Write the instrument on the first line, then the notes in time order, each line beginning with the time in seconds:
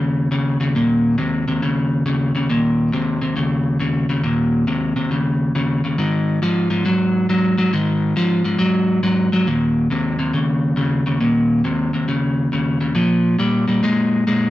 clean electric guitar
Already playing: D#2 C#3
0.31 D#2 C#3
0.60 D#2 C#3
0.75 D#2 A#2
1.18 D#2 C3
1.48 D#2 C3
1.62 D#2 C#3
2.06 D#2 C#3
2.35 D#2 C#3
2.49 D#2 A#2
2.93 D#2 C3
3.21 D#2 C3
3.36 D#2 C#3
3.80 D#2 C#3
4.09 D#2 C#3
4.23 D#2 A#2
4.67 D#2 C3
4.96 D#2 C3
5.11 D#2 C#3
5.55 D#2 C#3
5.84 D#2 C#3
5.98 G#2 D#3
6.42 G#2 F3
6.70 G#2 F3
6.85 G#2 F#3
7.29 G#2 F#3
7.58 G#2 F#3
7.73 G#2 D#3
8.16 G#2 F3
8.44 G#2 F3
8.58 G#2 F#3
9.03 G#2 F#3
9.32 G#2 F#3
9.47 D#2 A#2
9.90 D#2 C3
10.19 D#2 C3
10.33 D#2 C#3
10.76 D#2 C#3
11.06 D#2 C#3
11.21 D#2 A#2
11.64 D#2 C3
11.93 D#2 C3
12.08 D#2 C#3
12.52 D#2 C#3
12.80 D#2 C#3
12.95 A#2 F3
13.39 A#2 G3
13.68 A#2 G3
13.83 A#2 G#3
14.27 A#2 G#3